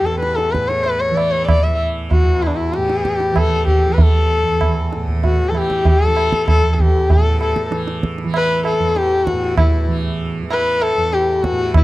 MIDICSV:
0, 0, Header, 1, 4, 480
1, 0, Start_track
1, 0, Tempo, 626305
1, 1135, Time_signature, 4, 2, 24, 8
1, 4011, Tempo, 620476
1, 9121, End_track
2, 0, Start_track
2, 0, Title_t, "Sarangi"
2, 0, Program_c, 0, 110
2, 38, Note_on_c, 0, 69, 94
2, 149, Note_off_c, 0, 69, 0
2, 154, Note_on_c, 0, 71, 95
2, 272, Note_on_c, 0, 69, 94
2, 284, Note_off_c, 0, 71, 0
2, 398, Note_on_c, 0, 71, 91
2, 409, Note_off_c, 0, 69, 0
2, 522, Note_on_c, 0, 73, 94
2, 533, Note_off_c, 0, 71, 0
2, 645, Note_on_c, 0, 71, 104
2, 656, Note_off_c, 0, 73, 0
2, 771, Note_on_c, 0, 73, 96
2, 783, Note_off_c, 0, 71, 0
2, 887, Note_on_c, 0, 74, 98
2, 898, Note_off_c, 0, 73, 0
2, 1005, Note_on_c, 0, 73, 104
2, 1016, Note_off_c, 0, 74, 0
2, 1126, Note_off_c, 0, 73, 0
2, 1131, Note_on_c, 0, 74, 115
2, 1250, Note_on_c, 0, 76, 101
2, 1261, Note_off_c, 0, 74, 0
2, 1373, Note_off_c, 0, 76, 0
2, 1617, Note_on_c, 0, 66, 89
2, 1857, Note_on_c, 0, 64, 88
2, 1869, Note_off_c, 0, 66, 0
2, 1896, Note_on_c, 0, 62, 68
2, 1907, Note_off_c, 0, 64, 0
2, 1959, Note_on_c, 0, 64, 85
2, 1971, Note_off_c, 0, 62, 0
2, 2102, Note_on_c, 0, 67, 93
2, 2113, Note_off_c, 0, 64, 0
2, 2589, Note_on_c, 0, 69, 109
2, 2600, Note_off_c, 0, 67, 0
2, 2812, Note_off_c, 0, 69, 0
2, 2817, Note_on_c, 0, 67, 94
2, 3011, Note_on_c, 0, 71, 69
2, 3022, Note_off_c, 0, 67, 0
2, 3074, Note_on_c, 0, 69, 108
2, 3086, Note_off_c, 0, 71, 0
2, 3783, Note_off_c, 0, 69, 0
2, 4023, Note_on_c, 0, 66, 89
2, 4211, Note_on_c, 0, 69, 77
2, 4223, Note_off_c, 0, 66, 0
2, 4274, Note_on_c, 0, 67, 98
2, 4286, Note_off_c, 0, 69, 0
2, 4503, Note_off_c, 0, 67, 0
2, 4503, Note_on_c, 0, 67, 123
2, 4650, Note_off_c, 0, 67, 0
2, 4650, Note_on_c, 0, 69, 123
2, 4975, Note_off_c, 0, 69, 0
2, 4980, Note_on_c, 0, 69, 116
2, 5166, Note_off_c, 0, 69, 0
2, 5166, Note_on_c, 0, 69, 71
2, 5225, Note_on_c, 0, 67, 96
2, 5237, Note_off_c, 0, 69, 0
2, 5462, Note_on_c, 0, 69, 101
2, 5474, Note_off_c, 0, 67, 0
2, 5693, Note_off_c, 0, 69, 0
2, 5698, Note_on_c, 0, 69, 87
2, 5922, Note_off_c, 0, 69, 0
2, 6433, Note_on_c, 0, 71, 116
2, 6650, Note_off_c, 0, 71, 0
2, 6662, Note_on_c, 0, 69, 103
2, 6900, Note_on_c, 0, 67, 112
2, 6911, Note_off_c, 0, 69, 0
2, 7136, Note_on_c, 0, 66, 95
2, 7148, Note_off_c, 0, 67, 0
2, 7367, Note_off_c, 0, 66, 0
2, 7371, Note_on_c, 0, 64, 81
2, 7598, Note_off_c, 0, 64, 0
2, 8093, Note_on_c, 0, 71, 109
2, 8335, Note_on_c, 0, 69, 119
2, 8346, Note_off_c, 0, 71, 0
2, 8573, Note_on_c, 0, 67, 98
2, 8585, Note_off_c, 0, 69, 0
2, 8815, Note_on_c, 0, 66, 106
2, 8827, Note_off_c, 0, 67, 0
2, 9054, Note_off_c, 0, 66, 0
2, 9065, Note_on_c, 0, 64, 81
2, 9121, Note_off_c, 0, 64, 0
2, 9121, End_track
3, 0, Start_track
3, 0, Title_t, "Tanpura"
3, 0, Program_c, 1, 104
3, 0, Note_on_c, 1, 45, 64
3, 0, Note_on_c, 1, 52, 69
3, 9, Note_on_c, 1, 40, 72
3, 436, Note_off_c, 1, 45, 0
3, 439, Note_on_c, 1, 45, 69
3, 848, Note_off_c, 1, 52, 0
3, 848, Note_on_c, 1, 52, 70
3, 1274, Note_off_c, 1, 52, 0
3, 1274, Note_on_c, 1, 52, 65
3, 1707, Note_off_c, 1, 40, 0
3, 1710, Note_on_c, 1, 40, 72
3, 2120, Note_off_c, 1, 45, 0
3, 2123, Note_on_c, 1, 45, 65
3, 2544, Note_off_c, 1, 52, 0
3, 2544, Note_on_c, 1, 52, 67
3, 2969, Note_off_c, 1, 52, 0
3, 2969, Note_on_c, 1, 52, 60
3, 3382, Note_off_c, 1, 40, 0
3, 3385, Note_on_c, 1, 40, 67
3, 3800, Note_off_c, 1, 45, 0
3, 3803, Note_on_c, 1, 45, 68
3, 4225, Note_off_c, 1, 52, 0
3, 4225, Note_on_c, 1, 52, 61
3, 4651, Note_off_c, 1, 52, 0
3, 4651, Note_on_c, 1, 52, 70
3, 5067, Note_off_c, 1, 40, 0
3, 5070, Note_on_c, 1, 40, 67
3, 5492, Note_off_c, 1, 45, 0
3, 5495, Note_on_c, 1, 45, 67
3, 5915, Note_off_c, 1, 52, 0
3, 5915, Note_on_c, 1, 52, 64
3, 6336, Note_off_c, 1, 52, 0
3, 6336, Note_on_c, 1, 52, 70
3, 6760, Note_off_c, 1, 40, 0
3, 6763, Note_on_c, 1, 40, 76
3, 7175, Note_off_c, 1, 45, 0
3, 7179, Note_on_c, 1, 45, 72
3, 7595, Note_off_c, 1, 52, 0
3, 7595, Note_on_c, 1, 52, 76
3, 8025, Note_off_c, 1, 52, 0
3, 8025, Note_on_c, 1, 52, 65
3, 8443, Note_off_c, 1, 40, 0
3, 8446, Note_on_c, 1, 40, 71
3, 8868, Note_off_c, 1, 45, 0
3, 8871, Note_on_c, 1, 45, 68
3, 9121, Note_off_c, 1, 40, 0
3, 9121, Note_off_c, 1, 45, 0
3, 9121, Note_off_c, 1, 52, 0
3, 9121, End_track
4, 0, Start_track
4, 0, Title_t, "Tabla"
4, 50, Note_on_c, 9, 62, 65
4, 126, Note_off_c, 9, 62, 0
4, 172, Note_on_c, 9, 62, 85
4, 249, Note_off_c, 9, 62, 0
4, 293, Note_on_c, 9, 62, 67
4, 370, Note_off_c, 9, 62, 0
4, 418, Note_on_c, 9, 37, 66
4, 495, Note_off_c, 9, 37, 0
4, 539, Note_on_c, 9, 62, 69
4, 616, Note_off_c, 9, 62, 0
4, 659, Note_on_c, 9, 63, 87
4, 735, Note_off_c, 9, 63, 0
4, 899, Note_on_c, 9, 60, 61
4, 976, Note_off_c, 9, 60, 0
4, 1138, Note_on_c, 9, 60, 91
4, 1138, Note_on_c, 9, 64, 76
4, 1215, Note_off_c, 9, 60, 0
4, 1215, Note_off_c, 9, 64, 0
4, 1617, Note_on_c, 9, 63, 85
4, 1617, Note_on_c, 9, 64, 71
4, 1694, Note_off_c, 9, 63, 0
4, 1694, Note_off_c, 9, 64, 0
4, 1859, Note_on_c, 9, 60, 67
4, 1935, Note_off_c, 9, 60, 0
4, 2096, Note_on_c, 9, 62, 86
4, 2173, Note_off_c, 9, 62, 0
4, 2218, Note_on_c, 9, 62, 67
4, 2295, Note_off_c, 9, 62, 0
4, 2338, Note_on_c, 9, 37, 69
4, 2414, Note_off_c, 9, 37, 0
4, 2454, Note_on_c, 9, 62, 66
4, 2531, Note_off_c, 9, 62, 0
4, 2573, Note_on_c, 9, 60, 89
4, 2573, Note_on_c, 9, 64, 74
4, 2650, Note_off_c, 9, 60, 0
4, 2650, Note_off_c, 9, 64, 0
4, 2813, Note_on_c, 9, 64, 57
4, 2889, Note_off_c, 9, 64, 0
4, 3051, Note_on_c, 9, 63, 116
4, 3051, Note_on_c, 9, 64, 99
4, 3127, Note_off_c, 9, 63, 0
4, 3127, Note_off_c, 9, 64, 0
4, 3532, Note_on_c, 9, 60, 85
4, 3532, Note_on_c, 9, 64, 74
4, 3608, Note_off_c, 9, 60, 0
4, 3608, Note_off_c, 9, 64, 0
4, 3775, Note_on_c, 9, 62, 63
4, 3851, Note_off_c, 9, 62, 0
4, 3891, Note_on_c, 9, 64, 58
4, 3968, Note_off_c, 9, 64, 0
4, 4013, Note_on_c, 9, 63, 89
4, 4013, Note_on_c, 9, 64, 76
4, 4090, Note_off_c, 9, 63, 0
4, 4090, Note_off_c, 9, 64, 0
4, 4253, Note_on_c, 9, 60, 71
4, 4330, Note_off_c, 9, 60, 0
4, 4371, Note_on_c, 9, 37, 66
4, 4449, Note_off_c, 9, 37, 0
4, 4490, Note_on_c, 9, 63, 83
4, 4490, Note_on_c, 9, 64, 82
4, 4567, Note_off_c, 9, 63, 0
4, 4567, Note_off_c, 9, 64, 0
4, 4733, Note_on_c, 9, 60, 68
4, 4810, Note_off_c, 9, 60, 0
4, 4855, Note_on_c, 9, 37, 70
4, 4933, Note_off_c, 9, 37, 0
4, 4974, Note_on_c, 9, 60, 89
4, 4974, Note_on_c, 9, 64, 80
4, 5051, Note_off_c, 9, 60, 0
4, 5051, Note_off_c, 9, 64, 0
4, 5216, Note_on_c, 9, 64, 62
4, 5293, Note_off_c, 9, 64, 0
4, 5454, Note_on_c, 9, 63, 83
4, 5454, Note_on_c, 9, 64, 76
4, 5532, Note_off_c, 9, 63, 0
4, 5532, Note_off_c, 9, 64, 0
4, 5693, Note_on_c, 9, 60, 70
4, 5770, Note_off_c, 9, 60, 0
4, 5811, Note_on_c, 9, 37, 65
4, 5889, Note_off_c, 9, 37, 0
4, 5934, Note_on_c, 9, 62, 92
4, 6011, Note_off_c, 9, 62, 0
4, 6055, Note_on_c, 9, 62, 69
4, 6132, Note_off_c, 9, 62, 0
4, 6176, Note_on_c, 9, 37, 70
4, 6254, Note_off_c, 9, 37, 0
4, 6293, Note_on_c, 9, 62, 66
4, 6370, Note_off_c, 9, 62, 0
4, 6413, Note_on_c, 9, 60, 88
4, 6490, Note_off_c, 9, 60, 0
4, 6653, Note_on_c, 9, 60, 81
4, 6731, Note_off_c, 9, 60, 0
4, 6894, Note_on_c, 9, 62, 85
4, 6971, Note_off_c, 9, 62, 0
4, 7133, Note_on_c, 9, 37, 86
4, 7211, Note_off_c, 9, 37, 0
4, 7369, Note_on_c, 9, 60, 99
4, 7369, Note_on_c, 9, 64, 93
4, 7447, Note_off_c, 9, 60, 0
4, 7447, Note_off_c, 9, 64, 0
4, 8089, Note_on_c, 9, 60, 91
4, 8166, Note_off_c, 9, 60, 0
4, 8329, Note_on_c, 9, 60, 84
4, 8407, Note_off_c, 9, 60, 0
4, 8571, Note_on_c, 9, 62, 89
4, 8648, Note_off_c, 9, 62, 0
4, 8811, Note_on_c, 9, 37, 86
4, 8889, Note_off_c, 9, 37, 0
4, 9047, Note_on_c, 9, 60, 113
4, 9047, Note_on_c, 9, 64, 97
4, 9121, Note_off_c, 9, 60, 0
4, 9121, Note_off_c, 9, 64, 0
4, 9121, End_track
0, 0, End_of_file